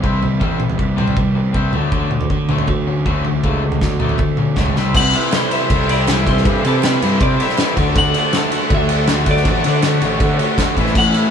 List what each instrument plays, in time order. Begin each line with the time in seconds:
Already playing: overdriven electric guitar E3 G3 C4
0.02 picked electric bass C2, overdriven electric guitar C3 G3 C4 E4, kick
0.21 overdriven electric guitar C3 G3, floor tom
0.40 picked electric bass A1, overdriven electric guitar C3 G3 C4, kick, floor tom
0.59 overdriven electric guitar C3 G3, mid tom
0.70 floor tom
0.78 picked electric bass C2, overdriven electric guitar C3 E3 G3, kick
0.96 overdriven electric guitar C3 G3 C4, floor tom, mid tom
1.08 floor tom
1.16 picked electric bass C2, overdriven electric guitar C3 E3 G3, kick, floor tom
1.35 overdriven electric guitar C3 G3 C4
1.53 picked electric bass C2, overdriven electric guitar C3 G3 C4 E4, kick
1.73 picked electric bass D2, overdriven electric guitar D3 F#3 A3, floor tom
1.91 overdriven electric guitar D3 F#3 A3, kick, floor tom
2.11 overdriven electric guitar D3 F#3, mid tom
2.21 floor tom
2.30 picked electric bass D2, overdriven electric guitar D3 F#3, kick
2.49 overdriven electric guitar D3 F#3 A3, floor tom, mid tom
2.58 floor tom
2.67 picked electric bass D2, overdriven electric guitar D3 F#3, kick, floor tom
2.87 overdriven electric guitar D3 F#3 C#4
3.06 picked electric bass D2, overdriven electric guitar D3 F#3 A3 F#4, kick
3.25 overdriven electric guitar D3 F#3 A3, floor tom
3.44 picked electric bass C#2, overdriven electric guitar D3 F#3 A3, kick, floor tom
3.63 overdriven electric guitar D3 F#3
3.72 floor tom
3.81 picked electric bass D2, overdriven electric guitar D3 F#3, kick, snare
4.00 overdriven electric guitar D3 F#3 A3, floor tom, mid tom
4.09 floor tom
4.18 picked electric bass D2, overdriven electric guitar D3 F#3, kick, floor tom
4.37 overdriven electric guitar D3 F#3 C#4, mid tom
4.56 picked electric bass C#2, overdriven electric guitar D3 F#3 A3 F#4, kick, snare, floor tom
4.66 floor tom
4.76 picked electric bass C2, overdriven electric guitar C3 G3 C4, snare
4.93 picked electric bass C2, overdriven electric guitar C3 E3 G3 C4 E4, string machine G4 E5 C6, clean electric guitar F#5, kick, crash
5.13 overdriven electric guitar G3 C4 E4, clean electric guitar E5, ride
5.31 overdriven electric guitar C3 E3 G3 C4 E4, snare, clap, ride
5.35 clean electric guitar C5
5.50 overdriven electric guitar G3 C4 E4, clean electric guitar E5, ride
5.70 picked electric bass C2, overdriven electric guitar G3, kick, ride
5.88 overdriven electric guitar G3 C4 E4, clean electric guitar D5, ride
6.07 overdriven electric guitar E3 G3 C4 E4, snare, clap, ride
6.27 picked electric bass C2, overdriven electric guitar G3, clean electric guitar C5, kick, ride
6.37 snare
6.44 picked electric bass G2, overdriven electric guitar C3 E3 G3 C4 E4, kick, ride
6.63 picked electric bass C3, overdriven electric guitar G3 C4 E4, clean electric guitar A4, ride
6.82 overdriven electric guitar C3 E3 G3 C4 E4, clean electric guitar B4, snare, clap, ride
7.02 picked electric bass G2, overdriven electric guitar G3 C4 E4, clean electric guitar C5, ride
7.21 picked electric bass C3, overdriven electric guitar G3, clean electric guitar D5, kick, ride
7.39 overdriven electric guitar G3 C4 E4, clean electric guitar E5, ride
7.49 snare
7.57 overdriven electric guitar E3 G3 C4 E4, clean electric guitar D5, snare, clap, ride
7.76 picked electric bass D2, overdriven electric guitar D3 A3 D4 F#4, string machine A4 F#5 A5, kick, ride
7.94 picked electric bass D2, overdriven electric guitar D3 A3 D4 F#4, kick, ride
7.98 clean electric guitar F#5
8.13 overdriven electric guitar A3 D4 F#4, ride
8.18 clean electric guitar F#5
8.32 overdriven electric guitar D3 A3 D4 F#4, snare, clap, ride
8.37 clean electric guitar A5
8.51 overdriven electric guitar A3 D4 F#4, ride
8.56 clean electric guitar F#5
8.70 picked electric bass D2, overdriven electric guitar A3, kick, ride
8.75 clean electric guitar E5
8.88 overdriven electric guitar A3 D4 F#4, ride
9.07 overdriven electric guitar D3 A3 D4 F#4, snare, clap, ride
9.26 picked electric bass D2, overdriven electric guitar A3, kick, ride
9.31 clean electric guitar D5
9.36 snare
9.44 picked electric bass A1, overdriven electric guitar D3 A3 D4 F#4, kick, ride
9.63 picked electric bass D3, overdriven electric guitar A3 D4 F#4, ride
9.69 clean electric guitar D5
9.82 overdriven electric guitar D3 A3 D4 F#4, clean electric guitar C#5, snare, clap, ride
10.00 picked electric bass A1, overdriven electric guitar A3 D4 F#4, ride
10.20 picked electric bass D3, overdriven electric guitar A3, kick, ride
10.38 overdriven electric guitar A3 D4 F#4, ride
10.57 overdriven electric guitar D3 A3 D4 F#4, kick, snare, clap, ride
10.76 picked electric bass A1, overdriven electric guitar A2 E3 A3 C#4 E4 A4, string machine A4 E5 C#6, kick, ride
10.87 snare
10.95 picked electric bass A1, overdriven electric guitar A2 E3 A3 C#4 E4 A4, clean electric guitar F#5, kick, crash
11.14 overdriven electric guitar A3 C#4 E4 A4, clean electric guitar E5, ride